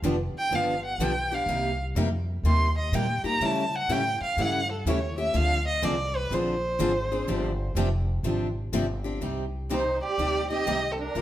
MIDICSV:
0, 0, Header, 1, 7, 480
1, 0, Start_track
1, 0, Key_signature, -3, "minor"
1, 0, Tempo, 483871
1, 1461, Time_signature, 4, 2, 24, 8
1, 11126, End_track
2, 0, Start_track
2, 0, Title_t, "Violin"
2, 0, Program_c, 0, 40
2, 377, Note_on_c, 0, 79, 105
2, 541, Note_on_c, 0, 77, 86
2, 556, Note_off_c, 0, 79, 0
2, 835, Note_off_c, 0, 77, 0
2, 845, Note_on_c, 0, 78, 92
2, 1022, Note_on_c, 0, 79, 99
2, 1037, Note_off_c, 0, 78, 0
2, 1330, Note_on_c, 0, 77, 92
2, 1345, Note_off_c, 0, 79, 0
2, 1793, Note_off_c, 0, 77, 0
2, 2448, Note_on_c, 0, 84, 88
2, 2727, Note_off_c, 0, 84, 0
2, 2753, Note_on_c, 0, 75, 80
2, 2923, Note_on_c, 0, 79, 90
2, 2938, Note_off_c, 0, 75, 0
2, 3225, Note_off_c, 0, 79, 0
2, 3235, Note_on_c, 0, 82, 108
2, 3419, Note_on_c, 0, 81, 95
2, 3434, Note_off_c, 0, 82, 0
2, 3724, Note_on_c, 0, 78, 106
2, 3738, Note_off_c, 0, 81, 0
2, 3885, Note_on_c, 0, 79, 110
2, 3900, Note_off_c, 0, 78, 0
2, 4186, Note_off_c, 0, 79, 0
2, 4197, Note_on_c, 0, 77, 96
2, 4378, Note_on_c, 0, 78, 104
2, 4393, Note_off_c, 0, 77, 0
2, 4672, Note_off_c, 0, 78, 0
2, 4678, Note_on_c, 0, 69, 57
2, 4857, Note_on_c, 0, 73, 83
2, 4872, Note_off_c, 0, 69, 0
2, 5137, Note_off_c, 0, 73, 0
2, 5143, Note_on_c, 0, 76, 99
2, 5319, Note_on_c, 0, 77, 117
2, 5334, Note_off_c, 0, 76, 0
2, 5622, Note_off_c, 0, 77, 0
2, 5630, Note_on_c, 0, 75, 102
2, 5798, Note_on_c, 0, 74, 88
2, 5813, Note_off_c, 0, 75, 0
2, 6110, Note_on_c, 0, 71, 103
2, 6125, Note_off_c, 0, 74, 0
2, 6282, Note_on_c, 0, 72, 94
2, 6297, Note_off_c, 0, 71, 0
2, 7708, Note_off_c, 0, 72, 0
2, 9645, Note_on_c, 0, 72, 84
2, 9925, Note_off_c, 0, 72, 0
2, 9953, Note_on_c, 0, 74, 94
2, 10392, Note_off_c, 0, 74, 0
2, 10423, Note_on_c, 0, 75, 100
2, 10830, Note_on_c, 0, 69, 54
2, 10845, Note_off_c, 0, 75, 0
2, 10917, Note_on_c, 0, 70, 75
2, 10931, Note_off_c, 0, 69, 0
2, 11126, Note_off_c, 0, 70, 0
2, 11126, End_track
3, 0, Start_track
3, 0, Title_t, "Steel-string acoustic guitar"
3, 0, Program_c, 1, 25
3, 3394, Note_on_c, 1, 55, 72
3, 3400, Note_on_c, 1, 64, 72
3, 3403, Note_on_c, 1, 69, 69
3, 3405, Note_on_c, 1, 73, 84
3, 3607, Note_off_c, 1, 55, 0
3, 3610, Note_off_c, 1, 64, 0
3, 3612, Note_off_c, 1, 69, 0
3, 3613, Note_off_c, 1, 73, 0
3, 3878, Note_on_c, 1, 55, 96
3, 3883, Note_on_c, 1, 64, 108
3, 3885, Note_on_c, 1, 69, 96
3, 3889, Note_on_c, 1, 73, 106
3, 3985, Note_off_c, 1, 55, 0
3, 3988, Note_off_c, 1, 64, 0
3, 3989, Note_off_c, 1, 69, 0
3, 3991, Note_off_c, 1, 73, 0
3, 4354, Note_on_c, 1, 55, 79
3, 4363, Note_on_c, 1, 64, 70
3, 4364, Note_on_c, 1, 69, 82
3, 4365, Note_on_c, 1, 73, 81
3, 4567, Note_off_c, 1, 55, 0
3, 4572, Note_off_c, 1, 64, 0
3, 4572, Note_off_c, 1, 69, 0
3, 4573, Note_off_c, 1, 73, 0
3, 4827, Note_on_c, 1, 55, 103
3, 4832, Note_on_c, 1, 64, 102
3, 4839, Note_on_c, 1, 69, 117
3, 4839, Note_on_c, 1, 73, 102
3, 4939, Note_off_c, 1, 55, 0
3, 4942, Note_off_c, 1, 64, 0
3, 4945, Note_off_c, 1, 69, 0
3, 4946, Note_off_c, 1, 73, 0
3, 11126, End_track
4, 0, Start_track
4, 0, Title_t, "Accordion"
4, 0, Program_c, 2, 21
4, 9623, Note_on_c, 2, 63, 71
4, 9914, Note_off_c, 2, 63, 0
4, 9937, Note_on_c, 2, 67, 83
4, 10383, Note_off_c, 2, 67, 0
4, 10422, Note_on_c, 2, 67, 87
4, 10782, Note_off_c, 2, 67, 0
4, 10813, Note_on_c, 2, 60, 45
4, 10898, Note_on_c, 2, 62, 70
4, 10900, Note_off_c, 2, 60, 0
4, 11126, Note_off_c, 2, 62, 0
4, 11126, End_track
5, 0, Start_track
5, 0, Title_t, "Steel-string acoustic guitar"
5, 0, Program_c, 3, 25
5, 35, Note_on_c, 3, 50, 94
5, 40, Note_on_c, 3, 53, 90
5, 40, Note_on_c, 3, 59, 89
5, 43, Note_on_c, 3, 62, 92
5, 47, Note_on_c, 3, 67, 89
5, 145, Note_off_c, 3, 50, 0
5, 148, Note_off_c, 3, 53, 0
5, 148, Note_off_c, 3, 59, 0
5, 149, Note_off_c, 3, 62, 0
5, 151, Note_off_c, 3, 67, 0
5, 516, Note_on_c, 3, 50, 66
5, 521, Note_on_c, 3, 53, 76
5, 521, Note_on_c, 3, 59, 67
5, 522, Note_on_c, 3, 62, 73
5, 523, Note_on_c, 3, 67, 74
5, 729, Note_off_c, 3, 50, 0
5, 732, Note_off_c, 3, 53, 0
5, 732, Note_off_c, 3, 59, 0
5, 732, Note_off_c, 3, 62, 0
5, 733, Note_off_c, 3, 67, 0
5, 994, Note_on_c, 3, 50, 92
5, 998, Note_on_c, 3, 53, 96
5, 998, Note_on_c, 3, 59, 92
5, 1004, Note_on_c, 3, 62, 105
5, 1005, Note_on_c, 3, 67, 100
5, 1104, Note_off_c, 3, 50, 0
5, 1106, Note_off_c, 3, 59, 0
5, 1107, Note_off_c, 3, 53, 0
5, 1109, Note_off_c, 3, 62, 0
5, 1110, Note_off_c, 3, 67, 0
5, 1305, Note_on_c, 3, 67, 64
5, 1310, Note_on_c, 3, 62, 55
5, 1320, Note_on_c, 3, 59, 51
5, 1459, Note_off_c, 3, 67, 0
5, 1462, Note_off_c, 3, 62, 0
5, 1467, Note_off_c, 3, 59, 0
5, 1472, Note_on_c, 3, 48, 64
5, 1474, Note_on_c, 3, 55, 68
5, 1475, Note_on_c, 3, 58, 70
5, 1478, Note_on_c, 3, 63, 73
5, 1478, Note_on_c, 3, 67, 70
5, 1687, Note_off_c, 3, 48, 0
5, 1688, Note_off_c, 3, 55, 0
5, 1689, Note_off_c, 3, 58, 0
5, 1690, Note_off_c, 3, 63, 0
5, 1690, Note_off_c, 3, 67, 0
5, 1946, Note_on_c, 3, 48, 88
5, 1947, Note_on_c, 3, 55, 93
5, 1952, Note_on_c, 3, 63, 89
5, 1953, Note_on_c, 3, 58, 91
5, 1957, Note_on_c, 3, 67, 106
5, 2060, Note_off_c, 3, 48, 0
5, 2060, Note_off_c, 3, 55, 0
5, 2063, Note_off_c, 3, 63, 0
5, 2064, Note_off_c, 3, 58, 0
5, 2066, Note_off_c, 3, 67, 0
5, 2429, Note_on_c, 3, 48, 77
5, 2429, Note_on_c, 3, 55, 75
5, 2433, Note_on_c, 3, 58, 67
5, 2433, Note_on_c, 3, 63, 68
5, 2438, Note_on_c, 3, 67, 88
5, 2645, Note_off_c, 3, 48, 0
5, 2645, Note_off_c, 3, 55, 0
5, 2647, Note_off_c, 3, 58, 0
5, 2647, Note_off_c, 3, 63, 0
5, 2650, Note_off_c, 3, 67, 0
5, 2907, Note_on_c, 3, 48, 88
5, 2912, Note_on_c, 3, 55, 89
5, 2914, Note_on_c, 3, 58, 101
5, 2916, Note_on_c, 3, 63, 104
5, 2917, Note_on_c, 3, 67, 96
5, 3020, Note_off_c, 3, 48, 0
5, 3023, Note_off_c, 3, 55, 0
5, 3024, Note_off_c, 3, 58, 0
5, 3025, Note_off_c, 3, 63, 0
5, 3025, Note_off_c, 3, 67, 0
5, 3215, Note_on_c, 3, 67, 62
5, 3225, Note_on_c, 3, 63, 58
5, 3231, Note_on_c, 3, 58, 50
5, 3374, Note_off_c, 3, 67, 0
5, 3379, Note_off_c, 3, 63, 0
5, 3381, Note_on_c, 3, 49, 70
5, 3382, Note_off_c, 3, 58, 0
5, 3385, Note_on_c, 3, 52, 70
5, 3387, Note_on_c, 3, 57, 78
5, 3388, Note_on_c, 3, 61, 74
5, 3392, Note_on_c, 3, 67, 71
5, 3601, Note_off_c, 3, 49, 0
5, 3603, Note_off_c, 3, 52, 0
5, 3604, Note_off_c, 3, 57, 0
5, 3604, Note_off_c, 3, 61, 0
5, 3606, Note_off_c, 3, 67, 0
5, 3862, Note_on_c, 3, 52, 90
5, 3864, Note_on_c, 3, 49, 90
5, 3867, Note_on_c, 3, 57, 98
5, 3870, Note_on_c, 3, 67, 96
5, 3871, Note_on_c, 3, 61, 94
5, 3978, Note_off_c, 3, 52, 0
5, 3979, Note_off_c, 3, 49, 0
5, 3980, Note_off_c, 3, 57, 0
5, 3982, Note_off_c, 3, 61, 0
5, 3982, Note_off_c, 3, 67, 0
5, 4342, Note_on_c, 3, 49, 71
5, 4346, Note_on_c, 3, 57, 72
5, 4348, Note_on_c, 3, 52, 67
5, 4352, Note_on_c, 3, 67, 75
5, 4353, Note_on_c, 3, 61, 80
5, 4561, Note_off_c, 3, 49, 0
5, 4563, Note_off_c, 3, 57, 0
5, 4564, Note_off_c, 3, 52, 0
5, 4566, Note_off_c, 3, 61, 0
5, 4566, Note_off_c, 3, 67, 0
5, 4828, Note_on_c, 3, 49, 94
5, 4832, Note_on_c, 3, 52, 96
5, 4833, Note_on_c, 3, 61, 102
5, 4834, Note_on_c, 3, 57, 108
5, 4837, Note_on_c, 3, 67, 103
5, 4940, Note_off_c, 3, 49, 0
5, 4942, Note_off_c, 3, 52, 0
5, 4943, Note_off_c, 3, 57, 0
5, 4943, Note_off_c, 3, 61, 0
5, 4945, Note_off_c, 3, 67, 0
5, 5137, Note_on_c, 3, 67, 65
5, 5147, Note_on_c, 3, 61, 58
5, 5152, Note_on_c, 3, 57, 47
5, 5294, Note_off_c, 3, 67, 0
5, 5297, Note_on_c, 3, 50, 76
5, 5297, Note_on_c, 3, 53, 75
5, 5298, Note_off_c, 3, 57, 0
5, 5299, Note_off_c, 3, 61, 0
5, 5302, Note_on_c, 3, 60, 72
5, 5305, Note_on_c, 3, 62, 70
5, 5306, Note_on_c, 3, 68, 81
5, 5518, Note_off_c, 3, 50, 0
5, 5518, Note_off_c, 3, 53, 0
5, 5520, Note_off_c, 3, 60, 0
5, 5522, Note_off_c, 3, 62, 0
5, 5523, Note_off_c, 3, 68, 0
5, 5779, Note_on_c, 3, 50, 94
5, 5785, Note_on_c, 3, 53, 97
5, 5785, Note_on_c, 3, 60, 94
5, 5786, Note_on_c, 3, 62, 100
5, 5790, Note_on_c, 3, 68, 94
5, 5895, Note_off_c, 3, 50, 0
5, 5898, Note_off_c, 3, 53, 0
5, 5898, Note_off_c, 3, 60, 0
5, 5899, Note_off_c, 3, 62, 0
5, 5900, Note_off_c, 3, 68, 0
5, 6271, Note_on_c, 3, 50, 73
5, 6271, Note_on_c, 3, 53, 76
5, 6275, Note_on_c, 3, 62, 81
5, 6277, Note_on_c, 3, 60, 82
5, 6280, Note_on_c, 3, 68, 77
5, 6484, Note_off_c, 3, 50, 0
5, 6484, Note_off_c, 3, 53, 0
5, 6486, Note_off_c, 3, 62, 0
5, 6487, Note_off_c, 3, 60, 0
5, 6489, Note_off_c, 3, 68, 0
5, 6740, Note_on_c, 3, 50, 93
5, 6744, Note_on_c, 3, 53, 108
5, 6744, Note_on_c, 3, 60, 97
5, 6746, Note_on_c, 3, 62, 103
5, 6749, Note_on_c, 3, 68, 105
5, 6855, Note_off_c, 3, 50, 0
5, 6857, Note_off_c, 3, 53, 0
5, 6857, Note_off_c, 3, 60, 0
5, 6858, Note_off_c, 3, 62, 0
5, 6859, Note_off_c, 3, 68, 0
5, 7060, Note_on_c, 3, 68, 65
5, 7066, Note_on_c, 3, 62, 59
5, 7071, Note_on_c, 3, 60, 55
5, 7214, Note_off_c, 3, 68, 0
5, 7215, Note_off_c, 3, 60, 0
5, 7217, Note_off_c, 3, 62, 0
5, 7223, Note_on_c, 3, 48, 68
5, 7224, Note_on_c, 3, 53, 70
5, 7227, Note_on_c, 3, 60, 72
5, 7228, Note_on_c, 3, 67, 79
5, 7229, Note_on_c, 3, 62, 83
5, 7440, Note_off_c, 3, 48, 0
5, 7440, Note_off_c, 3, 53, 0
5, 7442, Note_off_c, 3, 60, 0
5, 7442, Note_off_c, 3, 67, 0
5, 7443, Note_off_c, 3, 62, 0
5, 7702, Note_on_c, 3, 48, 89
5, 7704, Note_on_c, 3, 60, 98
5, 7706, Note_on_c, 3, 53, 93
5, 7708, Note_on_c, 3, 62, 105
5, 7708, Note_on_c, 3, 67, 97
5, 7816, Note_off_c, 3, 48, 0
5, 7817, Note_off_c, 3, 60, 0
5, 7818, Note_off_c, 3, 53, 0
5, 7819, Note_off_c, 3, 62, 0
5, 7819, Note_off_c, 3, 67, 0
5, 8174, Note_on_c, 3, 48, 70
5, 8176, Note_on_c, 3, 53, 73
5, 8178, Note_on_c, 3, 60, 75
5, 8181, Note_on_c, 3, 62, 82
5, 8185, Note_on_c, 3, 67, 80
5, 8396, Note_off_c, 3, 48, 0
5, 8397, Note_off_c, 3, 53, 0
5, 8398, Note_off_c, 3, 60, 0
5, 8399, Note_off_c, 3, 62, 0
5, 8401, Note_off_c, 3, 67, 0
5, 8659, Note_on_c, 3, 48, 92
5, 8663, Note_on_c, 3, 53, 92
5, 8663, Note_on_c, 3, 60, 100
5, 8663, Note_on_c, 3, 62, 103
5, 8668, Note_on_c, 3, 67, 108
5, 8774, Note_off_c, 3, 48, 0
5, 8777, Note_off_c, 3, 53, 0
5, 8777, Note_off_c, 3, 60, 0
5, 8777, Note_off_c, 3, 62, 0
5, 8779, Note_off_c, 3, 67, 0
5, 8970, Note_on_c, 3, 67, 62
5, 8979, Note_on_c, 3, 62, 55
5, 8986, Note_on_c, 3, 60, 50
5, 9130, Note_off_c, 3, 67, 0
5, 9132, Note_off_c, 3, 60, 0
5, 9135, Note_off_c, 3, 62, 0
5, 9139, Note_on_c, 3, 48, 55
5, 9143, Note_on_c, 3, 55, 62
5, 9143, Note_on_c, 3, 60, 68
5, 9148, Note_on_c, 3, 63, 71
5, 9148, Note_on_c, 3, 67, 62
5, 9359, Note_off_c, 3, 48, 0
5, 9361, Note_off_c, 3, 55, 0
5, 9361, Note_off_c, 3, 60, 0
5, 9363, Note_off_c, 3, 63, 0
5, 9364, Note_off_c, 3, 67, 0
5, 9625, Note_on_c, 3, 48, 77
5, 9626, Note_on_c, 3, 55, 82
5, 9629, Note_on_c, 3, 60, 82
5, 9630, Note_on_c, 3, 63, 88
5, 9633, Note_on_c, 3, 67, 96
5, 9739, Note_off_c, 3, 48, 0
5, 9739, Note_off_c, 3, 55, 0
5, 9741, Note_off_c, 3, 60, 0
5, 9741, Note_off_c, 3, 63, 0
5, 9742, Note_off_c, 3, 67, 0
5, 10105, Note_on_c, 3, 48, 63
5, 10111, Note_on_c, 3, 55, 67
5, 10112, Note_on_c, 3, 60, 68
5, 10113, Note_on_c, 3, 67, 74
5, 10116, Note_on_c, 3, 63, 72
5, 10324, Note_off_c, 3, 48, 0
5, 10326, Note_off_c, 3, 55, 0
5, 10327, Note_off_c, 3, 60, 0
5, 10327, Note_off_c, 3, 67, 0
5, 10329, Note_off_c, 3, 63, 0
5, 10419, Note_on_c, 3, 67, 57
5, 10428, Note_on_c, 3, 63, 50
5, 10436, Note_on_c, 3, 60, 42
5, 10573, Note_off_c, 3, 60, 0
5, 10577, Note_off_c, 3, 67, 0
5, 10578, Note_off_c, 3, 63, 0
5, 10581, Note_on_c, 3, 48, 87
5, 10585, Note_on_c, 3, 55, 89
5, 10585, Note_on_c, 3, 60, 93
5, 10590, Note_on_c, 3, 63, 100
5, 10590, Note_on_c, 3, 67, 92
5, 10698, Note_off_c, 3, 48, 0
5, 10700, Note_off_c, 3, 60, 0
5, 10701, Note_off_c, 3, 55, 0
5, 10703, Note_off_c, 3, 63, 0
5, 10703, Note_off_c, 3, 67, 0
5, 11061, Note_on_c, 3, 53, 65
5, 11067, Note_on_c, 3, 56, 60
5, 11068, Note_on_c, 3, 62, 58
5, 11072, Note_on_c, 3, 65, 67
5, 11075, Note_on_c, 3, 70, 72
5, 11126, Note_off_c, 3, 53, 0
5, 11126, Note_off_c, 3, 56, 0
5, 11126, Note_off_c, 3, 62, 0
5, 11126, Note_off_c, 3, 65, 0
5, 11126, Note_off_c, 3, 70, 0
5, 11126, End_track
6, 0, Start_track
6, 0, Title_t, "Upright bass"
6, 0, Program_c, 4, 32
6, 24, Note_on_c, 4, 29, 91
6, 314, Note_off_c, 4, 29, 0
6, 507, Note_on_c, 4, 31, 88
6, 970, Note_off_c, 4, 31, 0
6, 976, Note_on_c, 4, 35, 87
6, 1444, Note_off_c, 4, 35, 0
6, 1450, Note_on_c, 4, 36, 92
6, 1921, Note_off_c, 4, 36, 0
6, 1936, Note_on_c, 4, 41, 100
6, 2404, Note_off_c, 4, 41, 0
6, 2415, Note_on_c, 4, 39, 87
6, 2883, Note_off_c, 4, 39, 0
6, 2898, Note_on_c, 4, 46, 93
6, 3191, Note_off_c, 4, 46, 0
6, 3377, Note_on_c, 4, 49, 88
6, 3844, Note_off_c, 4, 49, 0
6, 3855, Note_on_c, 4, 45, 101
6, 4149, Note_off_c, 4, 45, 0
6, 4332, Note_on_c, 4, 43, 90
6, 4801, Note_off_c, 4, 43, 0
6, 4814, Note_on_c, 4, 39, 94
6, 5281, Note_off_c, 4, 39, 0
6, 5300, Note_on_c, 4, 38, 85
6, 5764, Note_off_c, 4, 38, 0
6, 5778, Note_on_c, 4, 36, 101
6, 6243, Note_off_c, 4, 36, 0
6, 6254, Note_on_c, 4, 34, 99
6, 6721, Note_off_c, 4, 34, 0
6, 6736, Note_on_c, 4, 32, 96
6, 7201, Note_off_c, 4, 32, 0
6, 7218, Note_on_c, 4, 31, 98
6, 7682, Note_off_c, 4, 31, 0
6, 7688, Note_on_c, 4, 29, 103
6, 8158, Note_off_c, 4, 29, 0
6, 8167, Note_on_c, 4, 32, 88
6, 8638, Note_off_c, 4, 32, 0
6, 8656, Note_on_c, 4, 31, 95
6, 9122, Note_off_c, 4, 31, 0
6, 9133, Note_on_c, 4, 36, 82
6, 9904, Note_off_c, 4, 36, 0
6, 10099, Note_on_c, 4, 38, 78
6, 10509, Note_off_c, 4, 38, 0
6, 10579, Note_on_c, 4, 36, 77
6, 10989, Note_off_c, 4, 36, 0
6, 11062, Note_on_c, 4, 34, 87
6, 11126, Note_off_c, 4, 34, 0
6, 11126, End_track
7, 0, Start_track
7, 0, Title_t, "Muted upright bass strokes"
7, 332, Note_on_c, 9, 29, 41
7, 431, Note_off_c, 9, 29, 0
7, 3211, Note_on_c, 9, 29, 45
7, 3310, Note_off_c, 9, 29, 0
7, 4173, Note_on_c, 9, 29, 44
7, 4272, Note_off_c, 9, 29, 0
7, 11126, End_track
0, 0, End_of_file